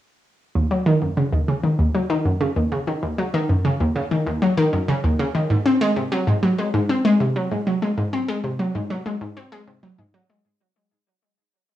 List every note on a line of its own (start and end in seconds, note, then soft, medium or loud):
0.55 0.66 D#2 medium
0.71 0.86 F#3 medium
0.86 0.97 D#3 medium
1.02 1.17 F#2 medium
1.17 1.28 C#3 medium
1.33 1.43 D#2 medium
1.48 1.55 C#3 medium
1.64 1.74 D#3 medium
1.79 1.90 D#2 medium
1.95 2.09 F#3 medium
2.10 2.20 D#3 medium
2.25 2.40 F#2 medium
2.41 2.51 C#3 medium
2.56 2.67 D#2 medium
2.72 2.78 C#3 medium
2.87 2.98 D#3 medium
3.03 3.13 D#2 medium
3.18 3.33 F#3 medium
3.34 3.44 D#3 medium
3.49 3.64 F#2 medium
3.65 3.75 C#3 medium
3.80 3.91 D#2 medium
3.96 4.02 C#3 medium
4.11 4.22 D#3 medium
4.27 4.37 D#2 medium
4.42 4.57 F#3 medium
4.57 4.68 D#3 loud
4.73 4.88 F#2 medium
4.88 4.99 C#3 medium
5.04 5.14 D#2 medium
5.19 5.26 C#3 medium
5.35 5.45 D#3 medium
5.50 5.61 G#2 medium
5.66 5.80 C4 medium
5.81 5.92 G#3 loud
5.96 6.11 C3 medium
6.12 6.22 F#3 medium
6.27 6.38 G#2 medium
6.43 6.49 F#3 medium
6.59 6.69 G#3 medium
6.74 6.84 G#2 medium
6.89 7.04 C4 medium
7.05 7.15 G#3 loud
7.20 7.35 C3 medium
7.36 7.46 F#3 medium
7.51 7.62 G#2 medium
7.67 7.73 F#3 medium
7.82 7.93 G#3 medium
7.98 8.08 G#2 medium
8.13 8.28 C4 medium
8.28 8.39 G#3 loud
8.44 8.59 C3 medium
8.59 8.70 F#3 medium
8.75 8.85 G#2 medium
8.90 8.97 F#3 medium
9.06 9.16 G#3 medium
9.21 9.32 G#2 medium
9.37 9.52 C4 medium
9.52 9.63 G#3 loud
9.67 9.82 C3 medium
9.83 9.94 F#3 medium
9.99 10.09 G#2 medium
10.14 10.20 F#3 medium
10.30 10.40 G#3 medium